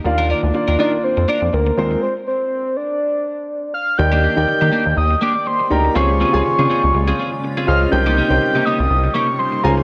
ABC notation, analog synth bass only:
X:1
M:4/4
L:1/16
Q:"Swing 16ths" 1/4=122
K:Fdor
V:1 name="Analog synth bass" clef=bass
E,,3 D,, z E,, E,2 z F,, z F,, D,,2 E,,2 | z16 | [K:Ebmix] E,,3 E,, E, E, z E,, E,,2 z4 =D,,2 | D,,3 D,, D, D, z D,, D,,2 z4 D,,2 |
C,,3 C,, C, C, z C,, C,,2 z4 D,,2 |]